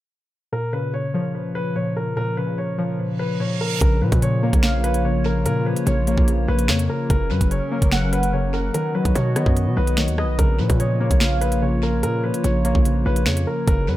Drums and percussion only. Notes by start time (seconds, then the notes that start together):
3.81 kick, closed hi-hat
4.12 kick, closed hi-hat
4.22 closed hi-hat
4.53 kick, closed hi-hat
4.63 finger snap, snare
4.84 closed hi-hat
4.94 closed hi-hat
5.46 closed hi-hat
5.76 closed hi-hat
5.87 closed hi-hat
6.07 closed hi-hat
6.18 kick
6.28 closed hi-hat
6.59 closed hi-hat
6.68 finger snap, snare
6.79 closed hi-hat
7.10 kick, closed hi-hat
7.41 kick, closed hi-hat
7.51 closed hi-hat
7.82 kick, closed hi-hat
7.92 finger snap, snare
8.13 closed hi-hat
8.23 closed hi-hat
8.74 closed hi-hat
9.05 kick, closed hi-hat
9.15 closed hi-hat
9.36 cross-stick, closed hi-hat
9.46 kick
9.57 closed hi-hat
9.87 closed hi-hat
9.97 finger snap, snare
10.08 closed hi-hat
10.18 cross-stick
10.39 kick, closed hi-hat
10.70 kick, closed hi-hat
10.80 closed hi-hat
11.11 kick, closed hi-hat
11.20 finger snap, snare
11.42 closed hi-hat
11.52 closed hi-hat
12.03 closed hi-hat
12.34 closed hi-hat
12.44 closed hi-hat
12.65 closed hi-hat
12.75 kick
12.85 closed hi-hat
13.16 closed hi-hat
13.26 finger snap, snare
13.37 closed hi-hat
13.68 kick, closed hi-hat